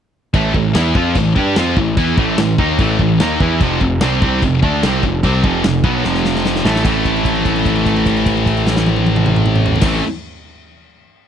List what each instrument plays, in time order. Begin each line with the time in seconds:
0.34 picked electric bass A1, distorted electric guitar A2 E3 A3, kick, china
0.54 picked electric bass A1, distorted electric guitar A2 E3, kick
0.75 picked electric bass E2, distorted electric guitar E3 B3 E4, snare, china
0.95 picked electric bass F2, distorted electric guitar F3 C4 F4, kick
1.15 picked electric bass A1, distorted electric guitar A2 E3, kick, china
1.36 picked electric bass G2, distorted electric guitar G3 D4 G4, kick
1.56 picked electric bass F2, distorted electric guitar F3 C4 F4, snare, china
1.77 picked electric bass A1, distorted electric guitar A2 E3, kick
1.97 picked electric bass E2, distorted electric guitar E3 B3 E4, kick, china
2.17 picked electric bass A1, distorted electric guitar A2 E3 A3, kick
2.38 picked electric bass A1, distorted electric guitar A2 E3, snare, china
2.58 picked electric bass D#2, distorted electric guitar D#3 A#3 D#4, kick
2.78 picked electric bass A1, distorted electric guitar A2 E3 A3, kick, china
2.99 picked electric bass A1, distorted electric guitar A2 E3, kick
3.20 picked electric bass D#2, distorted electric guitar D#3 A#3 D#4, snare, china
3.40 picked electric bass E2, distorted electric guitar E3 B3 E4, kick
3.60 picked electric bass F1, distorted electric guitar F2 C3 F3, kick, china
3.81 picked electric bass F1, distorted electric guitar F2 C3, kick
4.01 picked electric bass C2, distorted electric guitar C3 G3 C4, snare, china
4.22 picked electric bass C2, distorted electric guitar C3 G3 C4, kick
4.42 picked electric bass F1, distorted electric guitar F2 C3, kick, china
4.63 picked electric bass D2, distorted electric guitar D3 A3 D4, kick
4.83 picked electric bass C2, distorted electric guitar C3 G3 C4, snare, china
5.03 picked electric bass F1, distorted electric guitar F2 C3, kick
5.23 picked electric bass C2, distorted electric guitar C3 G3 C4, kick, china
5.44 picked electric bass F1, distorted electric guitar F2 C3 F3, kick
5.64 picked electric bass F1, distorted electric guitar F2 C3, snare, china
5.84 picked electric bass B1, distorted electric guitar B2 F#3 B3, kick
6.04 picked electric bass F1, distorted electric guitar F2 C3 F3, snare
6.15 snare
6.25 snare
6.35 snare
6.45 snare
6.55 snare
6.65 picked electric bass A1, distorted electric guitar A2 E3 A3, snare
6.76 snare
6.85 picked electric bass A1, distorted electric guitar A2 E3 A3 C4 E4, kick, crash
7.05 kick, crash
7.16 crash
7.25 kick, crash
7.35 crash
7.45 kick, crash
7.56 crash
7.65 kick, crash
7.76 crash
7.86 kick, crash
7.96 crash
8.06 kick, crash
8.17 crash
8.26 kick, crash
8.37 crash
8.46 kick, crash
8.57 crash
8.67 snare
8.76 snare
8.86 high tom
8.96 high tom
9.07 high tom
9.16 mid tom
9.26 mid tom
9.36 mid tom
9.46 mid tom
9.56 mid tom
9.66 floor tom
9.76 floor tom
9.81 picked electric bass A1, distorted electric guitar A2 E3 A3, kick, snare, crash
9.86 distorted electric guitar C4 E4